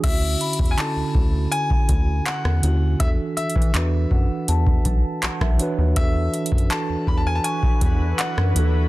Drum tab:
CC |x-----------------------------------------------|------------------------------------------------|------------------------------------------------|
HH |x-----x-x-x-x-----------x-----x-----x-----x-----|x-----x-x-x-x-----------x-----x-----x-----x-----|x-----x-x-x-x-----------x-----x-----x-----x-----|
CP |------------x-----------------------x-----------|------------x-----------------------x-----------|------------x-----------------------x-----------|
SD |---------------------------------------r--------|---------------------------------------r--------|---------------------------------------r--------|
BD |o--------o--------o--------o--o-----------------|o--------o--------o--------o--o--------o--------|o--------o--------o--------o--o-----------------|